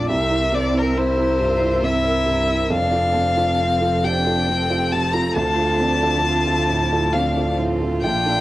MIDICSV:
0, 0, Header, 1, 6, 480
1, 0, Start_track
1, 0, Tempo, 877193
1, 48, Time_signature, 3, 2, 24, 8
1, 2448, Tempo, 888889
1, 4571, End_track
2, 0, Start_track
2, 0, Title_t, "Violin"
2, 0, Program_c, 0, 40
2, 54, Note_on_c, 0, 76, 80
2, 300, Note_on_c, 0, 74, 75
2, 308, Note_off_c, 0, 76, 0
2, 426, Note_on_c, 0, 70, 66
2, 434, Note_off_c, 0, 74, 0
2, 533, Note_on_c, 0, 72, 83
2, 541, Note_off_c, 0, 70, 0
2, 1006, Note_on_c, 0, 76, 85
2, 1014, Note_off_c, 0, 72, 0
2, 1486, Note_off_c, 0, 76, 0
2, 1491, Note_on_c, 0, 77, 98
2, 2212, Note_on_c, 0, 79, 88
2, 2220, Note_off_c, 0, 77, 0
2, 2687, Note_on_c, 0, 81, 86
2, 2695, Note_off_c, 0, 79, 0
2, 2805, Note_on_c, 0, 82, 75
2, 2813, Note_off_c, 0, 81, 0
2, 2920, Note_off_c, 0, 82, 0
2, 2923, Note_on_c, 0, 81, 102
2, 3882, Note_on_c, 0, 77, 74
2, 3890, Note_off_c, 0, 81, 0
2, 4124, Note_off_c, 0, 77, 0
2, 4357, Note_on_c, 0, 79, 101
2, 4571, Note_off_c, 0, 79, 0
2, 4571, End_track
3, 0, Start_track
3, 0, Title_t, "Upright piano"
3, 0, Program_c, 1, 0
3, 0, Control_c, 1, 64, 127
3, 0, Note_on_c, 1, 41, 40
3, 0, Note_on_c, 1, 57, 42
3, 0, Note_on_c, 1, 62, 40
3, 0, Note_on_c, 1, 65, 42
3, 50, Note_on_c, 1, 36, 60
3, 59, Control_c, 1, 64, 0
3, 60, Note_off_c, 1, 62, 0
3, 60, Note_off_c, 1, 65, 0
3, 62, Note_off_c, 1, 57, 0
3, 63, Note_off_c, 1, 41, 0
3, 161, Control_c, 1, 64, 127
3, 165, Note_off_c, 1, 36, 0
3, 167, Note_on_c, 1, 64, 43
3, 171, Note_on_c, 1, 70, 48
3, 275, Note_off_c, 1, 64, 0
3, 277, Note_off_c, 1, 70, 0
3, 287, Note_on_c, 1, 60, 47
3, 403, Note_on_c, 1, 64, 42
3, 405, Note_on_c, 1, 70, 47
3, 477, Note_off_c, 1, 60, 0
3, 620, Note_off_c, 1, 64, 0
3, 621, Note_off_c, 1, 70, 0
3, 641, Note_on_c, 1, 64, 42
3, 643, Note_on_c, 1, 70, 50
3, 749, Note_off_c, 1, 64, 0
3, 750, Note_off_c, 1, 70, 0
3, 763, Note_on_c, 1, 43, 45
3, 882, Note_on_c, 1, 64, 44
3, 884, Note_on_c, 1, 70, 50
3, 954, Note_off_c, 1, 43, 0
3, 990, Note_off_c, 1, 64, 0
3, 991, Note_off_c, 1, 70, 0
3, 996, Note_on_c, 1, 60, 49
3, 1118, Note_on_c, 1, 64, 44
3, 1119, Note_on_c, 1, 70, 46
3, 1191, Note_off_c, 1, 60, 0
3, 1228, Note_off_c, 1, 64, 0
3, 1229, Note_off_c, 1, 70, 0
3, 1232, Note_on_c, 1, 43, 45
3, 1358, Note_on_c, 1, 64, 43
3, 1359, Note_on_c, 1, 70, 47
3, 1430, Note_off_c, 1, 43, 0
3, 1469, Note_off_c, 1, 64, 0
3, 1470, Note_off_c, 1, 70, 0
3, 1477, Note_on_c, 1, 41, 61
3, 1493, Control_c, 1, 64, 0
3, 1589, Control_c, 1, 64, 127
3, 1595, Note_on_c, 1, 65, 42
3, 1596, Note_on_c, 1, 69, 50
3, 1597, Note_off_c, 1, 41, 0
3, 1708, Note_off_c, 1, 65, 0
3, 1709, Note_off_c, 1, 69, 0
3, 1719, Note_on_c, 1, 60, 50
3, 1840, Note_on_c, 1, 65, 47
3, 1844, Note_on_c, 1, 69, 51
3, 1915, Note_off_c, 1, 60, 0
3, 2063, Note_off_c, 1, 65, 0
3, 2065, Note_off_c, 1, 69, 0
3, 2085, Note_on_c, 1, 65, 43
3, 2087, Note_on_c, 1, 69, 51
3, 2195, Note_off_c, 1, 65, 0
3, 2196, Note_off_c, 1, 69, 0
3, 2207, Note_on_c, 1, 48, 45
3, 2331, Note_on_c, 1, 65, 46
3, 2335, Note_on_c, 1, 69, 45
3, 2401, Note_off_c, 1, 48, 0
3, 2438, Note_off_c, 1, 65, 0
3, 2441, Note_off_c, 1, 69, 0
3, 2453, Note_on_c, 1, 60, 48
3, 2570, Note_on_c, 1, 65, 42
3, 2573, Note_on_c, 1, 69, 51
3, 2641, Note_off_c, 1, 60, 0
3, 2676, Note_off_c, 1, 65, 0
3, 2678, Note_off_c, 1, 69, 0
3, 2693, Note_on_c, 1, 48, 47
3, 2807, Note_on_c, 1, 69, 49
3, 2808, Note_on_c, 1, 65, 46
3, 2881, Note_off_c, 1, 48, 0
3, 2914, Note_off_c, 1, 69, 0
3, 2915, Note_off_c, 1, 65, 0
3, 2927, Note_on_c, 1, 38, 63
3, 2936, Control_c, 1, 64, 0
3, 3017, Control_c, 1, 64, 127
3, 3041, Note_on_c, 1, 65, 43
3, 3043, Note_off_c, 1, 38, 0
3, 3044, Note_on_c, 1, 69, 47
3, 3152, Note_off_c, 1, 65, 0
3, 3153, Note_off_c, 1, 69, 0
3, 3164, Note_on_c, 1, 60, 50
3, 3285, Note_on_c, 1, 65, 48
3, 3288, Note_on_c, 1, 69, 50
3, 3358, Note_off_c, 1, 60, 0
3, 3504, Note_off_c, 1, 65, 0
3, 3506, Note_off_c, 1, 69, 0
3, 3525, Note_on_c, 1, 65, 45
3, 3525, Note_on_c, 1, 69, 51
3, 3633, Note_off_c, 1, 65, 0
3, 3633, Note_off_c, 1, 69, 0
3, 3647, Note_on_c, 1, 45, 45
3, 3772, Note_on_c, 1, 65, 41
3, 3773, Note_on_c, 1, 69, 47
3, 3838, Note_off_c, 1, 45, 0
3, 3877, Note_off_c, 1, 65, 0
3, 3877, Note_off_c, 1, 69, 0
3, 3888, Note_on_c, 1, 60, 49
3, 4010, Note_on_c, 1, 65, 44
3, 4013, Note_on_c, 1, 69, 48
3, 4079, Note_off_c, 1, 60, 0
3, 4116, Note_off_c, 1, 65, 0
3, 4118, Note_off_c, 1, 69, 0
3, 4129, Note_on_c, 1, 45, 43
3, 4254, Note_on_c, 1, 65, 42
3, 4255, Note_on_c, 1, 69, 47
3, 4320, Note_off_c, 1, 45, 0
3, 4359, Note_off_c, 1, 65, 0
3, 4360, Note_off_c, 1, 69, 0
3, 4374, Note_on_c, 1, 34, 55
3, 4377, Control_c, 1, 64, 0
3, 4480, Control_c, 1, 64, 127
3, 4488, Note_off_c, 1, 34, 0
3, 4491, Note_on_c, 1, 62, 41
3, 4493, Note_on_c, 1, 69, 45
3, 4571, Note_off_c, 1, 62, 0
3, 4571, Note_off_c, 1, 69, 0
3, 4571, End_track
4, 0, Start_track
4, 0, Title_t, "Cello"
4, 0, Program_c, 2, 42
4, 49, Note_on_c, 2, 60, 62
4, 526, Note_on_c, 2, 64, 60
4, 534, Note_off_c, 2, 60, 0
4, 775, Note_on_c, 2, 65, 61
4, 783, Note_off_c, 2, 64, 0
4, 1015, Note_on_c, 2, 64, 70
4, 1023, Note_off_c, 2, 65, 0
4, 1487, Note_off_c, 2, 64, 0
4, 1490, Note_on_c, 2, 62, 70
4, 1977, Note_on_c, 2, 60, 60
4, 1985, Note_off_c, 2, 62, 0
4, 2213, Note_on_c, 2, 62, 59
4, 2221, Note_off_c, 2, 60, 0
4, 2455, Note_on_c, 2, 60, 64
4, 2463, Note_off_c, 2, 62, 0
4, 2934, Note_on_c, 2, 65, 69
4, 2942, Note_off_c, 2, 60, 0
4, 3177, Note_on_c, 2, 62, 66
4, 3185, Note_off_c, 2, 65, 0
4, 3404, Note_off_c, 2, 62, 0
4, 3407, Note_on_c, 2, 65, 65
4, 3649, Note_on_c, 2, 64, 60
4, 3657, Note_off_c, 2, 65, 0
4, 3882, Note_on_c, 2, 62, 60
4, 3890, Note_off_c, 2, 64, 0
4, 4123, Note_on_c, 2, 65, 70
4, 4131, Note_off_c, 2, 62, 0
4, 4571, Note_off_c, 2, 65, 0
4, 4571, End_track
5, 0, Start_track
5, 0, Title_t, "String section"
5, 0, Program_c, 3, 48
5, 46, Note_on_c, 3, 70, 50
5, 47, Note_on_c, 3, 76, 52
5, 50, Note_on_c, 3, 60, 52
5, 1483, Note_off_c, 3, 70, 0
5, 1483, Note_off_c, 3, 76, 0
5, 1485, Note_on_c, 3, 69, 56
5, 1486, Note_on_c, 3, 53, 55
5, 2920, Note_off_c, 3, 60, 0
5, 2927, Note_on_c, 3, 60, 54
5, 4346, Note_off_c, 3, 60, 0
5, 4361, Note_off_c, 3, 69, 0
5, 4367, Note_on_c, 3, 58, 51
5, 4368, Note_off_c, 3, 53, 0
5, 4368, Note_on_c, 3, 69, 52
5, 4370, Note_on_c, 3, 62, 49
5, 4571, Note_off_c, 3, 58, 0
5, 4571, Note_off_c, 3, 62, 0
5, 4571, Note_off_c, 3, 69, 0
5, 4571, End_track
6, 0, Start_track
6, 0, Title_t, "Double bass"
6, 0, Program_c, 4, 43
6, 0, Note_on_c, 4, 34, 57
6, 52, Note_on_c, 4, 36, 58
6, 60, Note_off_c, 4, 34, 0
6, 1486, Note_on_c, 4, 29, 64
6, 1494, Note_off_c, 4, 36, 0
6, 2926, Note_on_c, 4, 38, 68
6, 2934, Note_off_c, 4, 29, 0
6, 4369, Note_on_c, 4, 34, 62
6, 4377, Note_off_c, 4, 38, 0
6, 4571, Note_off_c, 4, 34, 0
6, 4571, End_track
0, 0, End_of_file